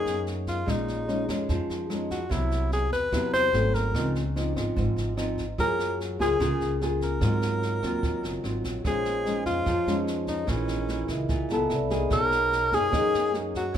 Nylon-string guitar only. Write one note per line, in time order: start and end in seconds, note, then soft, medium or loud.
0.00 0.65 F#2 medium
0.00 0.64 A#3 medium
0.00 0.64 D#4 medium
0.00 0.64 G#4 medium
0.66 1.47 A#2 soft
0.66 1.04 G#3 soft
0.66 1.05 C#4 soft
0.66 1.05 D#4 medium
1.08 1.25 G#3 soft
1.08 1.25 C#4 soft
1.08 1.26 D#4 medium
1.29 1.87 G#3 medium
1.29 1.87 C#4 medium
1.29 1.87 D#4 medium
1.49 2.29 F3 medium
1.90 2.16 G#3 medium
1.90 2.17 C#4 soft
1.90 2.17 D#4 soft
2.29 3.10 C3 soft
2.29 2.85 F#3 medium
2.29 2.85 B3 soft
2.29 2.86 E4 soft
3.12 3.51 C3 medium
3.12 3.50 F#3 medium
3.12 3.50 B3 medium
3.12 3.51 E4 medium
3.53 3.91 F#3 soft
3.53 3.91 A3 medium
3.53 3.91 C4 medium
3.95 4.74 C#3 soft
3.95 4.21 F3 soft
3.95 4.21 C4 medium
3.95 4.22 D#4 medium
4.36 4.53 F3 soft
4.36 4.53 C4 soft
4.36 4.53 D#4 medium
4.56 5.14 F3 medium
4.56 5.14 C4 medium
4.56 5.15 D#4 medium
4.76 5.56 G#2 medium
5.17 5.43 F3 medium
5.17 5.44 C4 soft
5.17 5.44 D#4 medium
5.58 6.38 F#3 soft
5.58 6.16 A#3 soft
5.58 6.17 F4 soft
5.58 6.17 G#4 medium
6.19 6.37 A#3 medium
6.19 6.37 F4 medium
6.19 6.37 G#4 medium
6.40 7.20 C#3 medium
6.40 6.78 A#3 medium
6.40 6.78 F4 medium
6.40 6.78 G#4 medium
6.82 7.19 A#3 medium
6.82 7.19 F4 soft
6.82 7.19 G#4 medium
7.22 8.01 G#2 soft
7.22 7.79 F#3 medium
7.22 7.80 C4 soft
7.22 7.80 F4 medium
7.82 8.41 F#3 soft
7.82 8.41 C4 medium
7.82 8.41 F4 medium
8.04 8.83 D#3 soft
8.44 8.82 F#3 medium
8.44 8.82 C4 medium
8.44 8.83 F4 soft
8.85 9.65 A#2 soft
8.85 9.23 G#3 soft
8.85 9.23 C#4 medium
8.85 9.23 D#4 soft
9.25 9.66 G#3 medium
9.25 9.66 C#4 soft
9.25 9.67 D#4 medium
9.67 10.47 F3 medium
9.87 10.45 G#3 medium
9.87 10.45 C#4 medium
9.87 10.46 D#4 medium
10.47 11.27 A#2 soft
10.47 10.86 E3 medium
10.47 10.86 A#3 soft
10.47 10.86 D#4 soft
10.89 11.30 E3 medium
10.89 11.30 A#3 medium
10.89 11.30 D#4 soft
11.30 11.69 A#2 medium
11.51 11.88 B3 medium
11.51 11.89 E4 medium
11.51 11.89 A4 medium
11.91 12.49 A#3 medium
11.91 12.49 D#4 medium
11.91 12.49 G#4 medium
12.11 12.91 B2 soft
12.73 12.90 A#3 medium
12.73 12.90 D#4 medium
12.73 12.91 G#4 medium
12.92 13.73 F#2 medium
12.92 13.31 A#3 medium
12.92 13.31 D#4 medium
12.92 13.31 G#4 medium
13.33 13.60 A#3 soft
13.33 13.60 D#4 soft
13.33 13.60 G#4 medium
13.74 13.78 A#2 medium
13.74 13.78 G#3 soft